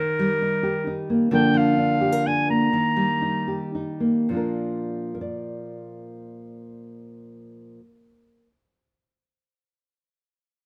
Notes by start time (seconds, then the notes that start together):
Already playing: D#3 A#4
0.00 A#4
0.19 G3
0.42 D#4
0.63 G4
0.87 D#4
1.10 A#3
1.31 D3 F3 A#3 D4 A#4 G5
1.54 F3 F5
1.78 D4
2.01 G4
2.12 A#4
2.27 D4 G#5
2.50 A#3 A#5
2.73 D#3
2.96 G3
3.22 D#4
3.48 G4
3.75 D#4
4.00 A#3
4.29 A#2 F3
4.33 D4 F4 A#4
5.15 A#4
5.21 D5